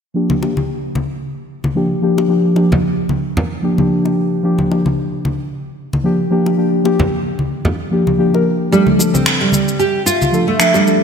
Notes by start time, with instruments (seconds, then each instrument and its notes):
0.14 synth keys F3 A#3 D4 G4
0.30 high conga
0.41 synth keys F3 A#3 D4 G4, high bongo
0.57 high conga
0.95 high conga
1.64 high conga
1.75 synth keys F3 A#3 D4 G4
2.02 synth keys F3 A#3 D4 G4
2.18 high bongo
2.28 synth keys F3 A#3 D4 G4
2.55 synth keys F3 A#3 D4 G4, high bongo
2.72 high conga, low conga
3.09 high conga
3.37 low conga
3.62 synth keys F3 A#3 D4 G4
3.76 synth keys F3 A#3 D4, high conga
3.80 synth keys G4
4.05 high bongo
4.43 synth keys F3 A#3 D4 G4
4.59 high conga
4.70 synth keys F3 A#3 D4 G4, high bongo
4.86 high conga
5.25 high conga
5.93 high conga
6.03 synth keys F3 A#3 D4 G4
6.30 synth keys F3 A#3 D4 G4
6.46 high bongo
6.57 synth keys F3 A#3 D4 G4
6.84 synth keys F3 A#3 D4 G4, high bongo
6.99 high conga, low conga
7.39 high conga
7.65 low conga
7.91 synth keys F3 A#3 D4 G4
8.07 high conga
8.18 synth keys F3 A#3 D4 G4
8.33 synth keys F3 A#3 D4 A#4, high bongo
8.71 synth keys F3 A3 D4 A4, nylon-string guitar G3, shaker
8.87 high conga
8.98 synth keys F3 A3 D4 A4, high bongo, shaker
9.14 nylon-string guitar C4, high conga, shaker
9.26 finger snap, shaker
9.41 nylon-string guitar G3
9.52 high conga, shaker
9.68 shaker
9.79 nylon-string guitar G4, shaker
10.06 nylon-string guitar F4, shaker
10.22 high conga, shaker
10.32 synth keys F3 A3 D4 A4, shaker
10.48 nylon-string guitar A3
10.59 synth keys F3 A3 D4 A4, finger snap, shaker
10.74 nylon-string guitar G3, high bongo, shaker
10.86 synth keys F3 A3 D4 A4, shaker